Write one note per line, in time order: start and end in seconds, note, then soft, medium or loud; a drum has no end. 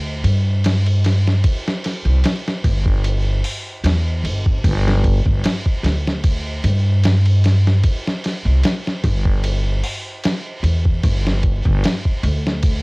0.00 0.20 D2 loud
0.24 1.40 G2 loud
0.24 ride medium
0.64 snare loud
0.64 ride medium
0.86 ride soft
1.04 snare medium
1.04 ride medium
1.27 snare soft
1.44 kick loud
1.44 ride medium
1.68 snare medium
1.84 snare soft
1.84 ride medium
2.05 2.21 C2 medium
2.24 snare loud
2.24 ride medium
2.48 snare soft
2.64 3.40 G1 medium
2.64 kick loud
2.64 ride medium
2.86 kick medium
3.04 ride medium
3.44 open hi-hat medium
3.84 4.25 E2 loud
3.84 snare loud
3.84 ride medium
4.24 4.59 G1 medium
4.24 ride medium
4.46 kick loud
4.64 5.21 G1 loud
4.64 kick loud
4.64 ride medium
4.88 snare medium
5.04 kick medium
5.04 ride medium
5.26 5.42 G1 medium
5.26 kick loud
5.44 snare loud
5.44 ride medium
5.66 kick medium
5.83 6.60 D2 medium
5.83 snare medium
5.83 ride medium
6.07 snare medium
6.24 kick loud
6.24 ride medium
6.64 7.80 G2 loud
6.64 ride medium
7.04 snare loud
7.04 ride medium
7.26 ride soft
7.44 snare medium
7.44 ride medium
7.67 snare soft
7.84 kick loud
7.84 ride medium
8.07 snare medium
8.24 snare soft
8.24 ride medium
8.45 8.61 C2 medium
8.64 snare loud
8.64 ride medium
8.87 snare soft
9.04 9.80 G1 loud
9.04 kick medium
9.04 ride medium
9.26 kick loud
9.44 ride medium
9.84 open hi-hat medium
10.24 snare loud
10.24 ride medium
10.63 10.99 E2 medium
10.63 ride medium
10.86 kick medium
11.03 11.61 G1 medium
11.03 kick loud
11.03 ride medium
11.27 snare medium
11.43 kick medium
11.43 ride medium
11.65 11.82 G1 medium
11.65 kick loud
11.84 snare loud
11.84 ride medium
12.05 kick loud
12.23 12.82 D2 loud
12.23 ride medium
12.47 snare medium
12.63 kick loud
12.63 ride medium